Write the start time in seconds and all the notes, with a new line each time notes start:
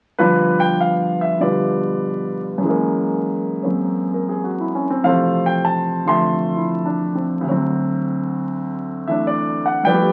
0.18 G2 D3 F3 B3 D4 F4 B4
0.60 G5
0.81 F5
1.21 E5
1.39 B2 D3 G3 F4 B4 D5
2.58 F#2 E3
2.65 G#3 A#3
3.63 F#3 A#3 C4
4.14 A#4
4.29 G#4
4.44 F#4
4.60 E4
4.75 C#4
4.90 C4
5.04 F2 C3 E3 A4 C5 F5
5.09 A3
5.46 G5
5.65 A5
6.05 D3 F3 A3 E5 A5 C6
6.56 E4
6.85 D4
7.15 C4
7.41 D2 D3
7.49 F#3 C4
9.08 E3 A3 D4 E5
9.27 D5
9.66 F#5
9.83 G2 F3 B4 D5 G5
9.89 A3 B3
9.94 G4